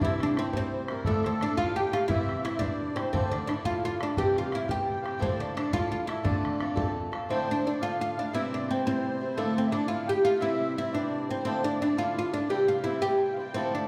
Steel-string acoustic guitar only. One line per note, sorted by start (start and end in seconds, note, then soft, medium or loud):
0.01 0.37 C3 medium
0.01 0.54 E3 medium
0.01 0.36 G3 medium
0.01 0.36 C4 medium
0.01 0.38 E4 medium
0.01 0.38 C5 medium
0.37 0.53 G3 soft
0.37 0.52 C4 medium
0.37 0.52 E4 medium
0.37 0.51 C5 medium
0.53 0.89 C3 soft
0.53 1.05 E3 soft
0.53 0.89 G3 medium
0.53 0.89 C4 soft
0.53 0.89 E4 medium
0.53 0.88 C5 medium
0.89 1.06 G3 soft
0.89 1.06 C4 soft
0.89 1.05 E4 soft
0.89 1.05 C5 soft
1.06 1.41 D3 medium
1.06 1.41 F3 medium
1.06 1.39 A3 medium
1.06 1.40 D4 medium
1.06 1.42 E4 medium
1.06 1.42 A4 medium
1.41 1.57 A3 medium
1.41 1.57 D4 medium
1.41 1.56 E4 medium
1.41 1.56 A4 medium
1.57 1.94 D3 soft
1.57 1.93 F3 medium
1.57 1.93 A3 medium
1.57 1.93 D4 medium
1.57 1.93 E4 medium
1.57 1.92 A4 medium
1.93 2.10 A3 soft
1.93 2.10 D4 soft
1.93 2.10 E4 soft
1.93 2.09 A4 soft
2.09 2.44 C3 medium
2.09 2.61 E3 medium
2.09 2.43 G3 medium
2.09 2.44 C4 medium
2.09 2.45 E4 medium
2.09 2.45 C5 medium
2.44 2.60 G3 medium
2.44 2.60 C4 medium
2.44 2.59 E4 medium
2.44 2.59 C5 medium
2.60 2.97 C3 soft
2.60 3.13 E3 medium
2.60 2.97 G3 soft
2.60 2.97 C4 medium
2.60 2.96 E4 medium
2.60 2.95 C5 soft
2.96 3.13 G3 soft
2.96 3.13 C4 soft
2.96 3.13 E4 soft
2.96 3.13 C5 soft
3.13 3.49 D3 medium
3.13 3.49 F3 medium
3.13 3.47 A3 medium
3.13 3.48 D4 medium
3.13 3.49 E4 medium
3.13 3.49 A4 medium
3.48 3.64 A3 soft
3.48 3.64 D4 medium
3.48 3.63 E4 medium
3.48 3.63 A4 medium
3.64 4.01 D3 soft
3.64 4.01 F3 soft
3.64 4.01 A3 soft
3.64 4.00 D4 soft
3.64 4.01 E4 medium
3.64 3.99 A4 medium
4.00 4.17 A3 soft
4.00 4.18 D4 soft
4.00 4.17 E4 soft
4.00 4.17 A4 medium
4.17 4.53 C3 medium
4.17 4.53 E3 medium
4.17 4.50 G3 medium
4.17 4.51 C4 medium
4.17 4.52 G4 medium
4.17 4.52 C5 medium
4.52 4.68 G3 medium
4.52 4.67 C4 medium
4.52 4.67 G4 medium
4.52 4.67 C5 medium
4.68 5.05 C3 soft
4.68 5.05 E3 soft
4.68 5.04 G3 medium
4.68 5.04 C4 medium
4.68 5.03 G4 medium
4.68 5.02 C5 medium
5.03 5.19 G3 soft
5.03 5.19 C4 soft
5.03 5.20 G4 soft
5.03 5.20 C5 soft
5.19 5.60 D3 medium
5.19 5.60 F3 medium
5.19 5.54 A3 medium
5.19 5.55 D4 medium
5.19 5.55 E4 medium
5.19 5.56 A4 medium
5.55 5.72 A3 medium
5.55 5.72 D4 soft
5.55 5.72 E4 medium
5.55 5.72 A4 medium
5.73 6.11 D3 soft
5.73 6.11 F3 soft
5.73 6.09 A3 medium
5.73 6.08 D4 medium
5.73 6.07 E4 medium
5.73 6.07 A4 medium
6.07 6.23 A3 soft
6.07 6.24 D4 soft
6.07 6.25 E4 soft
6.07 6.24 A4 medium
6.23 6.60 D3 medium
6.23 6.59 A3 medium
6.23 6.60 C4 medium
6.23 6.60 F4 medium
6.23 6.61 A4 medium
6.60 6.76 A3 medium
6.60 6.75 C4 soft
6.60 6.75 F4 medium
6.60 6.74 A4 medium
6.76 7.13 D3 medium
6.76 7.13 A3 medium
6.76 7.13 C4 medium
6.76 7.12 F4 medium
6.76 7.11 A4 medium
7.12 7.30 C4 soft
7.12 7.30 F4 medium
7.12 7.29 A4 medium
7.29 7.65 D3 medium
7.29 7.65 F3 medium
7.29 7.64 A3 medium
7.29 7.65 D4 medium
7.29 7.66 E4 medium
7.29 7.66 A4 medium
7.65 7.82 A3 soft
7.65 7.81 D4 medium
7.65 7.82 E4 medium
7.65 7.80 A4 medium
7.81 8.18 D3 medium
7.81 8.18 F3 medium
7.81 8.18 A3 soft
7.81 8.18 D4 medium
7.81 8.16 A4 medium
8.17 8.33 A3 soft
8.17 8.34 D4 soft
8.17 8.33 E4 medium
8.17 8.34 A4 medium
8.34 8.69 C3 medium
8.34 8.86 E3 medium
8.34 8.67 G3 medium
8.34 8.68 C4 medium
8.34 8.70 E4 medium
8.34 8.70 C5 medium
8.68 8.85 G3 soft
8.68 8.85 C4 soft
8.68 8.84 E4 medium
8.68 8.84 C5 medium
8.85 9.22 C3 soft
8.85 9.37 E3 medium
8.85 9.21 G3 medium
8.85 9.21 C4 medium
8.85 9.21 E4 medium
8.85 9.19 C5 medium
9.21 9.37 G3 soft
9.21 9.37 C4 soft
9.21 9.37 E4 soft
9.21 9.37 C5 medium
9.37 9.73 D3 medium
9.37 9.73 F3 medium
9.37 9.70 A3 medium
9.37 9.71 D4 medium
9.37 9.73 E4 medium
9.37 9.72 A4 medium
9.71 9.88 A3 medium
9.71 9.88 D4 medium
9.71 9.87 E4 medium
9.71 9.87 A4 medium
9.89 10.26 D3 soft
9.89 10.25 F3 medium
9.89 10.25 A3 medium
9.89 10.24 D4 medium
9.89 10.24 E4 medium
9.89 10.23 A4 medium
10.24 10.40 A3 soft
10.24 10.41 D4 soft
10.24 10.41 E4 soft
10.24 10.41 A4 medium
10.40 10.77 C3 medium
10.40 10.94 E3 medium
10.40 10.75 G3 medium
10.40 10.76 C4 medium
10.40 10.77 E4 medium
10.40 10.78 C5 medium
10.76 10.93 G3 medium
10.76 10.93 C4 medium
10.76 10.92 E4 medium
10.76 10.92 C5 medium
10.93 11.30 C3 soft
10.93 11.45 E3 medium
10.93 11.30 G3 medium
10.93 11.29 C4 medium
10.93 11.29 E4 medium
10.93 11.28 C5 medium
11.29 11.46 G3 soft
11.29 11.46 C4 soft
11.29 11.46 E4 soft
11.29 11.46 C5 soft
11.45 11.81 D3 medium
11.45 11.81 F3 medium
11.45 11.80 A3 medium
11.45 11.81 D4 medium
11.45 11.82 E4 medium
11.45 11.82 A4 medium
11.81 11.97 A3 medium
11.81 11.96 D4 medium
11.81 11.96 E4 medium
11.81 11.96 A4 medium
11.97 12.34 D3 medium
11.97 12.34 F3 medium
11.97 12.33 A3 medium
11.97 12.32 D4 medium
11.97 12.33 E4 medium
11.97 12.31 A4 medium
12.32 12.49 A3 soft
12.32 12.49 D4 soft
12.32 12.49 E4 soft
12.32 12.49 A4 medium
12.49 12.85 C3 medium
12.49 12.85 E3 medium
12.49 12.84 G3 medium
12.49 12.84 C4 medium
12.49 12.85 E4 medium
12.49 12.85 C5 medium
12.85 13.00 G3 medium
12.85 13.00 C4 medium
12.85 13.00 E4 medium
12.85 13.00 C5 medium
13.01 13.38 C3 soft
13.01 13.38 E3 medium
13.01 13.37 G3 medium
13.01 13.37 C4 medium
13.01 13.37 E4 medium
13.01 13.36 C5 medium
13.37 13.55 G3 soft
13.37 13.55 C4 soft
13.37 13.54 E4 soft
13.37 13.54 C5 soft
13.55 13.88 D3 medium
13.55 13.88 F3 medium
13.55 13.88 A3 medium
13.55 13.88 D4 medium
13.55 13.88 E4 medium
13.55 13.88 A4 medium